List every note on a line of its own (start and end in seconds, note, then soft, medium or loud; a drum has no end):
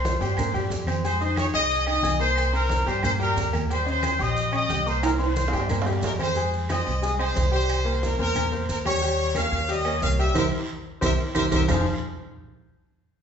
0.00 0.15 C2 medium
0.00 0.15 C4 medium
0.00 0.15 C5 medium
0.00 0.20 C5 medium
0.00 0.15 C6 medium
0.00 0.21 C6 medium
0.04 high conga loud
0.04 short guiro medium
0.04 maracas medium
0.21 0.67 G2 medium
0.21 0.35 G3 medium
0.21 0.35 G4 medium
0.21 0.69 C5 medium
0.21 0.35 G5 medium
0.21 0.69 C6 medium
0.21 high conga soft
0.21 low agogo medium
0.21 short guiro medium
0.21 maracas soft
0.37 0.51 A#3 medium
0.37 0.52 A#4 medium
0.37 0.52 A#5 medium
0.37 high conga soft
0.37 low conga medium
0.37 low agogo loud
0.37 long guiro medium
0.37 claves medium
0.37 maracas medium
0.53 0.81 G3 medium
0.53 0.81 G4 medium
0.53 0.81 G5 medium
0.53 high conga soft
0.53 low conga medium
0.53 maracas soft
0.70 1.48 F2 medium
0.70 high conga soft
0.70 low timbale medium
0.70 low agogo medium
0.70 short guiro medium
0.70 maracas medium
0.87 1.01 C4 medium
0.87 1.01 C5 medium
0.87 1.01 C6 medium
0.87 high conga medium
0.87 low agogo loud
0.87 short guiro medium
0.87 claves medium
0.87 maracas soft
1.04 1.18 G#3 medium
1.04 1.18 G#4 medium
1.04 1.20 C5 loud
1.04 1.18 G#5 medium
1.04 1.20 C6 medium
1.04 high conga soft
1.04 low agogo medium
1.04 long guiro medium
1.04 maracas medium
1.20 1.48 D#4 medium
1.20 1.37 C5 medium
1.20 1.48 D#5 medium
1.20 1.37 C6 medium
1.20 1.48 D#6 medium
1.20 high conga soft
1.20 maracas soft
1.36 1.46 C#5 loud
1.36 1.46 C#6 medium
1.36 high conga medium
1.36 low agogo loud
1.36 short guiro medium
1.36 claves medium
1.36 maracas medium
1.54 2.00 C2 medium
1.54 1.81 G#4 medium
1.54 1.85 D#5 loud
1.54 1.81 G#5 medium
1.54 1.85 D#6 medium
1.54 1.81 G#6 medium
1.54 high conga soft
1.54 low agogo medium
1.54 short guiro medium
1.54 maracas soft
1.70 high conga soft
1.70 long guiro medium
1.70 maracas medium
1.86 2.01 D#4 medium
1.86 2.18 D#5 loud
1.86 2.01 D#5 medium
1.86 2.01 D#6 medium
1.86 2.18 D#6 medium
1.86 high conga soft
1.86 low agogo loud
1.86 claves medium
1.86 maracas soft
2.03 2.81 C2 medium
2.03 2.17 G#4 medium
2.03 2.17 G#5 medium
2.03 2.17 G#6 medium
2.03 high conga medium
2.03 low agogo medium
2.03 short guiro medium
2.03 maracas medium
2.20 2.47 A#3 medium
2.20 2.47 A#4 medium
2.20 2.51 C5 loud
2.20 2.48 A#5 medium
2.20 2.51 C6 medium
2.20 high conga soft
2.20 short guiro medium
2.20 maracas soft
2.36 high conga soft
2.36 low agogo loud
2.36 long guiro medium
2.36 claves medium
2.36 maracas medium
2.53 2.80 C4 medium
2.53 2.85 A#4 loud
2.53 2.81 C5 medium
2.53 2.85 A#5 medium
2.53 2.81 C6 medium
2.53 high conga soft
2.53 low agogo medium
2.53 maracas soft
2.69 high conga loud
2.69 short guiro medium
2.69 maracas medium
2.86 3.33 G2 loud
2.86 3.00 G3 medium
2.86 3.00 G4 medium
2.86 3.03 C5 loud
2.86 3.01 G5 medium
2.86 3.03 C6 medium
2.86 low agogo medium
2.86 short guiro medium
2.86 maracas soft
3.03 3.17 A#3 medium
3.03 3.17 A#4 medium
3.03 3.11 C5 loud
3.03 3.18 A#5 medium
3.03 3.12 C6 medium
3.03 high conga soft
3.03 low conga medium
3.03 low agogo loud
3.03 long guiro medium
3.03 claves medium
3.03 maracas medium
3.20 3.47 G3 loud
3.20 3.47 G4 medium
3.20 3.51 A#4 loud
3.20 3.47 G5 loud
3.20 3.51 A#5 medium
3.20 high conga soft
3.20 maracas soft
3.36 4.14 D#2 medium
3.36 high conga soft
3.36 low timbale medium
3.36 low agogo medium
3.36 short guiro medium
3.36 maracas medium
3.53 3.67 A#3 medium
3.53 3.67 A#4 medium
3.53 3.67 A#5 medium
3.53 high conga medium
3.53 low agogo loud
3.53 short guiro medium
3.53 claves medium
3.53 maracas soft
3.69 3.84 G3 medium
3.69 3.84 G4 medium
3.69 3.86 C5 loud
3.69 3.84 G5 medium
3.69 3.86 C6 medium
3.69 high conga soft
3.69 low agogo medium
3.69 long guiro medium
3.69 maracas medium
3.86 4.13 C#4 medium
3.86 4.19 C5 loud
3.86 4.14 D#5 medium
3.86 4.19 C6 medium
3.86 high conga soft
3.86 maracas soft
4.03 high conga medium
4.03 low agogo loud
4.03 short guiro medium
4.03 claves medium
4.03 maracas medium
4.19 4.66 A#1 medium
4.19 4.47 G4 medium
4.19 4.54 D#5 loud
4.19 4.47 G5 medium
4.19 4.54 D#6 medium
4.19 4.47 G6 medium
4.19 high conga soft
4.19 low agogo medium
4.19 short guiro medium
4.19 maracas soft
4.35 high conga soft
4.35 long guiro medium
4.35 maracas medium
4.52 4.66 C#4 medium
4.52 4.66 C#5 medium
4.52 4.85 D#5 loud
4.52 4.66 C#6 medium
4.52 4.85 D#6 medium
4.52 high conga soft
4.52 low agogo loud
4.52 claves medium
4.52 maracas soft
4.69 5.47 C2 medium
4.69 4.83 G4 medium
4.69 4.83 G5 medium
4.69 4.83 G6 medium
4.69 high conga medium
4.69 low timbale medium
4.69 low agogo medium
4.69 short guiro medium
4.69 maracas medium
4.86 5.14 A#3 medium
4.86 5.14 A#4 medium
4.86 5.04 C5 loud
4.86 5.14 A#5 medium
4.86 5.04 C6 medium
4.86 high conga soft
4.86 short guiro medium
4.86 maracas soft
5.03 5.11 A#4 medium
5.03 5.11 A#5 medium
5.03 high conga soft
5.03 high timbale loud
5.03 low agogo loud
5.03 long guiro medium
5.03 claves medium
5.03 maracas medium
5.14 high timbale medium
5.19 5.46 C4 medium
5.19 5.47 C5 medium
5.19 5.83 C5 medium
5.19 5.47 C6 medium
5.19 5.83 C6 medium
5.19 high conga soft
5.19 low agogo medium
5.19 maracas soft
5.26 high timbale medium
5.36 high conga medium
5.36 short guiro medium
5.36 maracas medium
5.48 low timbale loud
5.52 6.00 G2 medium
5.52 5.66 G3 medium
5.52 5.66 G4 medium
5.52 5.67 G5 medium
5.52 high conga soft
5.52 low agogo medium
5.52 short guiro medium
5.52 maracas soft
5.60 low timbale loud
5.69 5.83 A#3 medium
5.69 5.84 A#4 medium
5.69 5.84 A#5 medium
5.69 high conga soft
5.69 low conga medium
5.69 low agogo loud
5.69 long guiro medium
5.69 claves medium
5.69 maracas medium
5.82 low timbale loud
5.86 6.13 G3 medium
5.86 6.14 G4 medium
5.86 6.14 G5 medium
5.86 high conga soft
5.86 maracas soft
5.93 low timbale medium
6.02 6.80 F2 medium
6.02 6.12 A#4 medium
6.02 high conga soft
6.02 low timbale loud
6.02 low agogo medium
6.02 short guiro medium
6.02 maracas medium
6.16 6.33 C4 medium
6.16 6.33 C5 medium
6.16 6.33 C6 medium
6.16 high conga medium
6.16 low timbale medium
6.16 short guiro medium
6.16 maracas soft
6.20 6.52 C5 medium
6.20 low agogo loud
6.20 claves medium
6.27 low timbale medium
6.36 6.63 G#3 medium
6.36 6.64 G#4 medium
6.36 6.64 G#5 medium
6.36 high conga soft
6.36 low agogo medium
6.36 long guiro medium
6.36 maracas medium
6.53 high conga soft
6.53 maracas soft
6.69 6.97 C4 medium
6.69 6.97 C5 medium
6.69 6.97 D#5 medium
6.69 7.01 D#5 loud
6.69 high conga medium
6.69 low agogo loud
6.69 short guiro medium
6.69 claves medium
6.69 maracas medium
6.86 7.33 C2 medium
6.86 high conga soft
6.86 low agogo medium
6.86 short guiro medium
6.86 maracas soft
7.02 7.16 G#3 medium
7.02 7.16 G#4 medium
7.02 7.12 D#5 medium
7.02 7.17 G#5 medium
7.02 high conga soft
7.02 long guiro medium
7.02 maracas medium
7.19 7.33 C4 medium
7.19 7.33 C5 medium
7.19 7.51 C5 loud
7.19 7.33 D#5 medium
7.19 high conga soft
7.19 low agogo loud
7.19 claves medium
7.19 maracas soft
7.35 8.14 C2 medium
7.35 7.49 C4 medium
7.35 7.50 C5 medium
7.35 7.50 D#5 medium
7.35 high conga medium
7.35 low timbale medium
7.35 low agogo medium
7.35 short guiro medium
7.35 maracas medium
7.51 7.79 G3 medium
7.51 7.79 G4 medium
7.51 7.99 C5 loud
7.51 7.80 G5 medium
7.51 high conga soft
7.51 short guiro medium
7.51 maracas soft
7.69 high conga soft
7.69 low agogo loud
7.69 long guiro medium
7.69 claves medium
7.69 maracas medium
7.85 8.12 A#3 medium
7.85 8.13 A#4 medium
7.85 8.13 C5 medium
7.85 high conga soft
7.85 low agogo medium
7.85 maracas soft
8.03 8.20 A#4 medium
8.03 high conga medium
8.03 short guiro medium
8.03 maracas medium
8.19 8.66 E2 medium
8.19 8.47 A#3 medium
8.19 8.47 A#4 medium
8.19 8.51 A#4 loud
8.19 8.47 C5 medium
8.19 high conga soft
8.19 low agogo medium
8.19 short guiro medium
8.19 maracas soft
8.35 high conga soft
8.35 low conga medium
8.35 low agogo loud
8.35 long guiro medium
8.35 claves medium
8.35 maracas medium
8.52 8.80 A#3 medium
8.52 8.80 A#4 medium
8.52 8.80 C5 medium
8.52 high conga soft
8.52 maracas soft
8.69 9.47 D#2 medium
8.69 8.78 A#4 medium
8.69 high conga soft
8.69 low agogo medium
8.69 short guiro medium
8.69 maracas medium
8.85 8.99 G3 medium
8.85 8.99 G4 medium
8.85 9.33 C#5 loud
8.85 8.99 G5 medium
8.85 high conga medium
8.85 low agogo loud
8.85 short guiro medium
8.85 claves medium
8.85 maracas soft
9.02 9.29 G3 medium
9.02 9.30 G4 medium
9.02 9.30 G5 medium
9.02 high conga soft
9.02 low agogo medium
9.02 long guiro medium
9.02 maracas medium
9.18 high conga soft
9.18 maracas soft
9.35 9.63 A#3 medium
9.35 9.63 A#4 medium
9.35 9.63 C#5 medium
9.35 9.70 F5 loud
9.35 high conga medium
9.35 low agogo loud
9.35 short guiro medium
9.35 claves medium
9.35 maracas medium
9.52 9.99 D#2 loud
9.52 high conga soft
9.52 low agogo medium
9.52 short guiro medium
9.52 maracas soft
9.68 9.82 G3 medium
9.68 9.82 G4 medium
9.68 10.04 D#5 loud
9.68 9.83 G5 medium
9.68 high conga soft
9.68 long guiro medium
9.68 maracas medium
9.85 9.99 A#3 medium
9.85 9.99 A#4 medium
9.85 9.99 C#5 medium
9.85 high conga soft
9.85 low agogo loud
9.85 claves medium
9.85 maracas soft
10.01 10.33 C2 loud
10.01 10.16 A#3 medium
10.01 10.16 A#4 medium
10.01 10.16 C#5 medium
10.01 10.10 F5 loud
10.01 high conga medium
10.01 low agogo medium
10.01 short guiro medium
10.01 maracas medium
10.19 10.32 G3 medium
10.19 10.33 G4 medium
10.19 10.35 E5 loud
10.19 10.33 G5 medium
10.19 high conga soft
10.19 short guiro medium
10.19 maracas soft
10.34 10.48 C2 loud
10.34 10.46 G4 loud
10.34 10.46 A#4 medium
10.34 10.45 A#4 loud
10.34 10.46 C5 medium
10.34 10.45 C5 medium
10.34 10.44 E5 loud
10.34 high conga loud
10.34 high timbale loud
10.34 long guiro loud
10.34 claves loud
10.34 maracas loud
11.01 11.15 C2 loud
11.01 11.12 G4 loud
11.01 11.12 A#4 loud
11.01 11.11 A#4 medium
11.01 11.12 C5 medium
11.01 11.10 C5 medium
11.01 11.11 E5 loud
11.01 high conga loud
11.01 high timbale medium
11.01 long guiro loud
11.01 claves loud
11.01 maracas loud
11.35 11.48 C2 medium
11.35 11.46 G4 medium
11.35 11.46 A#4 medium
11.35 11.44 A#4 medium
11.35 11.46 C5 loud
11.35 11.44 C5 loud
11.35 11.44 E5 loud
11.35 high conga loud
11.35 high timbale loud
11.35 long guiro medium
11.35 claves loud
11.35 maracas loud
11.52 11.64 C2 loud
11.52 11.63 G4 medium
11.52 11.63 A#4 medium
11.52 11.60 A#4 loud
11.52 11.63 C5 medium
11.52 11.60 C5 loud
11.52 11.61 E5 loud
11.52 high conga loud
11.52 high timbale loud
11.52 long guiro medium
11.52 claves loud
11.52 maracas loud
11.68 11.84 F1 medium
11.68 11.84 F3 medium
11.68 11.84 C4 medium
11.68 11.84 D#4 medium
11.68 11.84 F4 medium
11.68 11.84 G#4 medium
11.68 11.84 C5 loud
11.68 11.85 F5 medium
11.68 low conga loud
11.68 low timbale loud
11.68 long guiro loud
11.68 claves medium
11.68 maracas loud